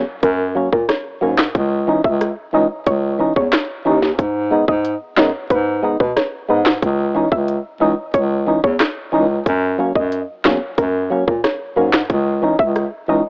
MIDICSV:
0, 0, Header, 1, 5, 480
1, 0, Start_track
1, 0, Tempo, 659341
1, 1128, Time_signature, 4, 2, 24, 8
1, 9677, End_track
2, 0, Start_track
2, 0, Title_t, "Synth pluck"
2, 0, Program_c, 0, 84
2, 168, Note_on_c, 0, 70, 95
2, 275, Note_off_c, 0, 70, 0
2, 529, Note_on_c, 0, 70, 77
2, 635, Note_off_c, 0, 70, 0
2, 649, Note_on_c, 0, 73, 71
2, 755, Note_off_c, 0, 73, 0
2, 890, Note_on_c, 0, 70, 81
2, 996, Note_off_c, 0, 70, 0
2, 1490, Note_on_c, 0, 76, 73
2, 1596, Note_off_c, 0, 76, 0
2, 1851, Note_on_c, 0, 75, 85
2, 1957, Note_off_c, 0, 75, 0
2, 2089, Note_on_c, 0, 73, 87
2, 2196, Note_off_c, 0, 73, 0
2, 2452, Note_on_c, 0, 73, 83
2, 2557, Note_off_c, 0, 73, 0
2, 3409, Note_on_c, 0, 75, 74
2, 3515, Note_off_c, 0, 75, 0
2, 3770, Note_on_c, 0, 73, 83
2, 3876, Note_off_c, 0, 73, 0
2, 4011, Note_on_c, 0, 71, 96
2, 4116, Note_off_c, 0, 71, 0
2, 4370, Note_on_c, 0, 71, 80
2, 4476, Note_off_c, 0, 71, 0
2, 4490, Note_on_c, 0, 73, 73
2, 4596, Note_off_c, 0, 73, 0
2, 4730, Note_on_c, 0, 71, 84
2, 4836, Note_off_c, 0, 71, 0
2, 5329, Note_on_c, 0, 76, 75
2, 5435, Note_off_c, 0, 76, 0
2, 5689, Note_on_c, 0, 75, 83
2, 5795, Note_off_c, 0, 75, 0
2, 5929, Note_on_c, 0, 73, 88
2, 6035, Note_off_c, 0, 73, 0
2, 6289, Note_on_c, 0, 73, 79
2, 6395, Note_off_c, 0, 73, 0
2, 7249, Note_on_c, 0, 75, 76
2, 7355, Note_off_c, 0, 75, 0
2, 7608, Note_on_c, 0, 73, 81
2, 7715, Note_off_c, 0, 73, 0
2, 7847, Note_on_c, 0, 70, 95
2, 7955, Note_off_c, 0, 70, 0
2, 8207, Note_on_c, 0, 70, 78
2, 8314, Note_off_c, 0, 70, 0
2, 8329, Note_on_c, 0, 73, 72
2, 8435, Note_off_c, 0, 73, 0
2, 8567, Note_on_c, 0, 70, 85
2, 8674, Note_off_c, 0, 70, 0
2, 9169, Note_on_c, 0, 76, 77
2, 9275, Note_off_c, 0, 76, 0
2, 9529, Note_on_c, 0, 75, 79
2, 9635, Note_off_c, 0, 75, 0
2, 9677, End_track
3, 0, Start_track
3, 0, Title_t, "Synth stab"
3, 0, Program_c, 1, 62
3, 401, Note_on_c, 1, 54, 79
3, 407, Note_on_c, 1, 58, 69
3, 413, Note_on_c, 1, 61, 88
3, 500, Note_off_c, 1, 54, 0
3, 504, Note_off_c, 1, 58, 0
3, 507, Note_off_c, 1, 61, 0
3, 882, Note_on_c, 1, 54, 75
3, 888, Note_on_c, 1, 58, 67
3, 894, Note_on_c, 1, 61, 88
3, 981, Note_off_c, 1, 54, 0
3, 984, Note_off_c, 1, 58, 0
3, 987, Note_off_c, 1, 61, 0
3, 1362, Note_on_c, 1, 52, 78
3, 1368, Note_on_c, 1, 61, 70
3, 1373, Note_on_c, 1, 63, 90
3, 1461, Note_off_c, 1, 52, 0
3, 1464, Note_off_c, 1, 61, 0
3, 1467, Note_off_c, 1, 63, 0
3, 1841, Note_on_c, 1, 52, 76
3, 1847, Note_on_c, 1, 61, 70
3, 1853, Note_on_c, 1, 63, 89
3, 1941, Note_off_c, 1, 52, 0
3, 1944, Note_off_c, 1, 61, 0
3, 1947, Note_off_c, 1, 63, 0
3, 2321, Note_on_c, 1, 52, 77
3, 2327, Note_on_c, 1, 61, 74
3, 2333, Note_on_c, 1, 63, 84
3, 2421, Note_off_c, 1, 52, 0
3, 2424, Note_off_c, 1, 61, 0
3, 2427, Note_off_c, 1, 63, 0
3, 2802, Note_on_c, 1, 52, 88
3, 2808, Note_on_c, 1, 61, 84
3, 2814, Note_on_c, 1, 63, 98
3, 2901, Note_off_c, 1, 52, 0
3, 2904, Note_off_c, 1, 61, 0
3, 2907, Note_off_c, 1, 63, 0
3, 3280, Note_on_c, 1, 56, 76
3, 3286, Note_on_c, 1, 59, 75
3, 3292, Note_on_c, 1, 63, 88
3, 3380, Note_off_c, 1, 56, 0
3, 3383, Note_off_c, 1, 59, 0
3, 3386, Note_off_c, 1, 63, 0
3, 3762, Note_on_c, 1, 56, 81
3, 3767, Note_on_c, 1, 59, 70
3, 3774, Note_on_c, 1, 63, 84
3, 3861, Note_off_c, 1, 56, 0
3, 3864, Note_off_c, 1, 59, 0
3, 3867, Note_off_c, 1, 63, 0
3, 4241, Note_on_c, 1, 56, 77
3, 4247, Note_on_c, 1, 59, 73
3, 4253, Note_on_c, 1, 63, 87
3, 4341, Note_off_c, 1, 56, 0
3, 4344, Note_off_c, 1, 59, 0
3, 4346, Note_off_c, 1, 63, 0
3, 4721, Note_on_c, 1, 56, 76
3, 4727, Note_on_c, 1, 59, 70
3, 4733, Note_on_c, 1, 63, 86
3, 4820, Note_off_c, 1, 56, 0
3, 4824, Note_off_c, 1, 59, 0
3, 4826, Note_off_c, 1, 63, 0
3, 5202, Note_on_c, 1, 52, 78
3, 5208, Note_on_c, 1, 61, 72
3, 5214, Note_on_c, 1, 63, 83
3, 5301, Note_off_c, 1, 52, 0
3, 5304, Note_off_c, 1, 61, 0
3, 5307, Note_off_c, 1, 63, 0
3, 5682, Note_on_c, 1, 52, 79
3, 5687, Note_on_c, 1, 61, 70
3, 5694, Note_on_c, 1, 63, 84
3, 5781, Note_off_c, 1, 52, 0
3, 5784, Note_off_c, 1, 61, 0
3, 5787, Note_off_c, 1, 63, 0
3, 6163, Note_on_c, 1, 52, 80
3, 6169, Note_on_c, 1, 61, 73
3, 6175, Note_on_c, 1, 63, 84
3, 6262, Note_off_c, 1, 52, 0
3, 6264, Note_off_c, 1, 61, 0
3, 6268, Note_off_c, 1, 63, 0
3, 6641, Note_on_c, 1, 52, 91
3, 6646, Note_on_c, 1, 61, 79
3, 6653, Note_on_c, 1, 63, 101
3, 6740, Note_off_c, 1, 52, 0
3, 6743, Note_off_c, 1, 61, 0
3, 6747, Note_off_c, 1, 63, 0
3, 7122, Note_on_c, 1, 54, 76
3, 7128, Note_on_c, 1, 58, 74
3, 7134, Note_on_c, 1, 61, 87
3, 7221, Note_off_c, 1, 54, 0
3, 7224, Note_off_c, 1, 58, 0
3, 7227, Note_off_c, 1, 61, 0
3, 7603, Note_on_c, 1, 54, 76
3, 7608, Note_on_c, 1, 58, 73
3, 7615, Note_on_c, 1, 61, 85
3, 7701, Note_off_c, 1, 54, 0
3, 7704, Note_off_c, 1, 58, 0
3, 7708, Note_off_c, 1, 61, 0
3, 8082, Note_on_c, 1, 54, 78
3, 8088, Note_on_c, 1, 58, 72
3, 8094, Note_on_c, 1, 61, 88
3, 8181, Note_off_c, 1, 54, 0
3, 8184, Note_off_c, 1, 58, 0
3, 8187, Note_off_c, 1, 61, 0
3, 8563, Note_on_c, 1, 54, 77
3, 8570, Note_on_c, 1, 58, 68
3, 8576, Note_on_c, 1, 61, 81
3, 8661, Note_off_c, 1, 54, 0
3, 8665, Note_off_c, 1, 58, 0
3, 8668, Note_off_c, 1, 61, 0
3, 9042, Note_on_c, 1, 52, 78
3, 9048, Note_on_c, 1, 61, 69
3, 9054, Note_on_c, 1, 63, 86
3, 9141, Note_off_c, 1, 52, 0
3, 9144, Note_off_c, 1, 61, 0
3, 9147, Note_off_c, 1, 63, 0
3, 9522, Note_on_c, 1, 52, 75
3, 9529, Note_on_c, 1, 61, 69
3, 9535, Note_on_c, 1, 63, 85
3, 9621, Note_off_c, 1, 52, 0
3, 9624, Note_off_c, 1, 61, 0
3, 9627, Note_off_c, 1, 63, 0
3, 9677, End_track
4, 0, Start_track
4, 0, Title_t, "Bass clarinet"
4, 0, Program_c, 2, 71
4, 166, Note_on_c, 2, 42, 110
4, 462, Note_off_c, 2, 42, 0
4, 528, Note_on_c, 2, 46, 87
4, 626, Note_off_c, 2, 46, 0
4, 887, Note_on_c, 2, 44, 83
4, 1084, Note_off_c, 2, 44, 0
4, 1128, Note_on_c, 2, 37, 107
4, 1423, Note_off_c, 2, 37, 0
4, 1487, Note_on_c, 2, 37, 100
4, 1684, Note_off_c, 2, 37, 0
4, 1848, Note_on_c, 2, 37, 91
4, 1946, Note_off_c, 2, 37, 0
4, 2087, Note_on_c, 2, 37, 101
4, 2382, Note_off_c, 2, 37, 0
4, 2449, Note_on_c, 2, 40, 91
4, 2547, Note_off_c, 2, 40, 0
4, 2807, Note_on_c, 2, 39, 96
4, 3047, Note_on_c, 2, 44, 106
4, 3058, Note_off_c, 2, 39, 0
4, 3342, Note_off_c, 2, 44, 0
4, 3407, Note_on_c, 2, 44, 97
4, 3604, Note_off_c, 2, 44, 0
4, 3768, Note_on_c, 2, 42, 94
4, 3866, Note_off_c, 2, 42, 0
4, 4006, Note_on_c, 2, 44, 107
4, 4302, Note_off_c, 2, 44, 0
4, 4369, Note_on_c, 2, 47, 102
4, 4467, Note_off_c, 2, 47, 0
4, 4727, Note_on_c, 2, 44, 87
4, 4924, Note_off_c, 2, 44, 0
4, 4968, Note_on_c, 2, 37, 107
4, 5263, Note_off_c, 2, 37, 0
4, 5327, Note_on_c, 2, 37, 103
4, 5524, Note_off_c, 2, 37, 0
4, 5687, Note_on_c, 2, 37, 99
4, 5786, Note_off_c, 2, 37, 0
4, 5926, Note_on_c, 2, 37, 105
4, 6222, Note_off_c, 2, 37, 0
4, 6289, Note_on_c, 2, 40, 100
4, 6387, Note_off_c, 2, 40, 0
4, 6648, Note_on_c, 2, 37, 94
4, 6844, Note_off_c, 2, 37, 0
4, 6888, Note_on_c, 2, 42, 118
4, 7183, Note_off_c, 2, 42, 0
4, 7247, Note_on_c, 2, 42, 98
4, 7444, Note_off_c, 2, 42, 0
4, 7606, Note_on_c, 2, 40, 92
4, 7705, Note_off_c, 2, 40, 0
4, 7847, Note_on_c, 2, 42, 106
4, 8142, Note_off_c, 2, 42, 0
4, 8209, Note_on_c, 2, 46, 86
4, 8307, Note_off_c, 2, 46, 0
4, 8567, Note_on_c, 2, 44, 85
4, 8764, Note_off_c, 2, 44, 0
4, 8808, Note_on_c, 2, 37, 107
4, 9103, Note_off_c, 2, 37, 0
4, 9167, Note_on_c, 2, 37, 96
4, 9364, Note_off_c, 2, 37, 0
4, 9528, Note_on_c, 2, 37, 93
4, 9626, Note_off_c, 2, 37, 0
4, 9677, End_track
5, 0, Start_track
5, 0, Title_t, "Drums"
5, 165, Note_on_c, 9, 42, 64
5, 166, Note_on_c, 9, 36, 99
5, 238, Note_off_c, 9, 42, 0
5, 239, Note_off_c, 9, 36, 0
5, 529, Note_on_c, 9, 36, 96
5, 601, Note_off_c, 9, 36, 0
5, 648, Note_on_c, 9, 37, 98
5, 648, Note_on_c, 9, 38, 71
5, 649, Note_on_c, 9, 42, 76
5, 721, Note_off_c, 9, 37, 0
5, 721, Note_off_c, 9, 38, 0
5, 722, Note_off_c, 9, 42, 0
5, 1006, Note_on_c, 9, 39, 97
5, 1008, Note_on_c, 9, 38, 116
5, 1079, Note_off_c, 9, 39, 0
5, 1081, Note_off_c, 9, 38, 0
5, 1128, Note_on_c, 9, 36, 110
5, 1128, Note_on_c, 9, 42, 66
5, 1201, Note_off_c, 9, 36, 0
5, 1201, Note_off_c, 9, 42, 0
5, 1487, Note_on_c, 9, 36, 94
5, 1560, Note_off_c, 9, 36, 0
5, 1608, Note_on_c, 9, 42, 83
5, 1610, Note_on_c, 9, 37, 77
5, 1681, Note_off_c, 9, 42, 0
5, 1682, Note_off_c, 9, 37, 0
5, 2086, Note_on_c, 9, 42, 63
5, 2087, Note_on_c, 9, 36, 101
5, 2159, Note_off_c, 9, 42, 0
5, 2160, Note_off_c, 9, 36, 0
5, 2449, Note_on_c, 9, 36, 92
5, 2522, Note_off_c, 9, 36, 0
5, 2567, Note_on_c, 9, 39, 97
5, 2569, Note_on_c, 9, 38, 125
5, 2570, Note_on_c, 9, 42, 80
5, 2640, Note_off_c, 9, 39, 0
5, 2642, Note_off_c, 9, 38, 0
5, 2643, Note_off_c, 9, 42, 0
5, 2928, Note_on_c, 9, 38, 70
5, 3001, Note_off_c, 9, 38, 0
5, 3048, Note_on_c, 9, 36, 103
5, 3048, Note_on_c, 9, 42, 62
5, 3120, Note_off_c, 9, 36, 0
5, 3120, Note_off_c, 9, 42, 0
5, 3407, Note_on_c, 9, 36, 94
5, 3480, Note_off_c, 9, 36, 0
5, 3528, Note_on_c, 9, 42, 85
5, 3600, Note_off_c, 9, 42, 0
5, 3765, Note_on_c, 9, 39, 87
5, 3766, Note_on_c, 9, 38, 114
5, 3837, Note_off_c, 9, 39, 0
5, 3839, Note_off_c, 9, 38, 0
5, 4006, Note_on_c, 9, 42, 65
5, 4007, Note_on_c, 9, 36, 99
5, 4079, Note_off_c, 9, 36, 0
5, 4079, Note_off_c, 9, 42, 0
5, 4369, Note_on_c, 9, 36, 95
5, 4442, Note_off_c, 9, 36, 0
5, 4489, Note_on_c, 9, 37, 97
5, 4489, Note_on_c, 9, 38, 73
5, 4490, Note_on_c, 9, 42, 77
5, 4562, Note_off_c, 9, 37, 0
5, 4562, Note_off_c, 9, 38, 0
5, 4563, Note_off_c, 9, 42, 0
5, 4846, Note_on_c, 9, 39, 97
5, 4847, Note_on_c, 9, 38, 118
5, 4919, Note_off_c, 9, 39, 0
5, 4920, Note_off_c, 9, 38, 0
5, 4968, Note_on_c, 9, 36, 109
5, 4968, Note_on_c, 9, 42, 62
5, 5040, Note_off_c, 9, 36, 0
5, 5041, Note_off_c, 9, 42, 0
5, 5327, Note_on_c, 9, 36, 95
5, 5400, Note_off_c, 9, 36, 0
5, 5447, Note_on_c, 9, 42, 86
5, 5520, Note_off_c, 9, 42, 0
5, 5926, Note_on_c, 9, 42, 65
5, 5927, Note_on_c, 9, 36, 97
5, 5999, Note_off_c, 9, 36, 0
5, 5999, Note_off_c, 9, 42, 0
5, 6289, Note_on_c, 9, 36, 94
5, 6362, Note_off_c, 9, 36, 0
5, 6407, Note_on_c, 9, 39, 96
5, 6408, Note_on_c, 9, 37, 104
5, 6408, Note_on_c, 9, 38, 117
5, 6410, Note_on_c, 9, 42, 79
5, 6479, Note_off_c, 9, 39, 0
5, 6481, Note_off_c, 9, 37, 0
5, 6481, Note_off_c, 9, 38, 0
5, 6483, Note_off_c, 9, 42, 0
5, 6888, Note_on_c, 9, 36, 109
5, 6888, Note_on_c, 9, 42, 65
5, 6961, Note_off_c, 9, 36, 0
5, 6961, Note_off_c, 9, 42, 0
5, 7247, Note_on_c, 9, 36, 95
5, 7320, Note_off_c, 9, 36, 0
5, 7368, Note_on_c, 9, 42, 82
5, 7441, Note_off_c, 9, 42, 0
5, 7606, Note_on_c, 9, 39, 90
5, 7608, Note_on_c, 9, 38, 116
5, 7679, Note_off_c, 9, 39, 0
5, 7681, Note_off_c, 9, 38, 0
5, 7846, Note_on_c, 9, 42, 69
5, 7847, Note_on_c, 9, 36, 101
5, 7919, Note_off_c, 9, 42, 0
5, 7920, Note_off_c, 9, 36, 0
5, 8209, Note_on_c, 9, 36, 93
5, 8282, Note_off_c, 9, 36, 0
5, 8329, Note_on_c, 9, 37, 96
5, 8329, Note_on_c, 9, 38, 72
5, 8330, Note_on_c, 9, 42, 80
5, 8401, Note_off_c, 9, 37, 0
5, 8401, Note_off_c, 9, 38, 0
5, 8403, Note_off_c, 9, 42, 0
5, 8687, Note_on_c, 9, 39, 95
5, 8688, Note_on_c, 9, 38, 115
5, 8759, Note_off_c, 9, 39, 0
5, 8761, Note_off_c, 9, 38, 0
5, 8808, Note_on_c, 9, 36, 105
5, 8808, Note_on_c, 9, 42, 66
5, 8881, Note_off_c, 9, 36, 0
5, 8881, Note_off_c, 9, 42, 0
5, 9167, Note_on_c, 9, 36, 93
5, 9239, Note_off_c, 9, 36, 0
5, 9288, Note_on_c, 9, 42, 85
5, 9289, Note_on_c, 9, 37, 76
5, 9361, Note_off_c, 9, 42, 0
5, 9362, Note_off_c, 9, 37, 0
5, 9677, End_track
0, 0, End_of_file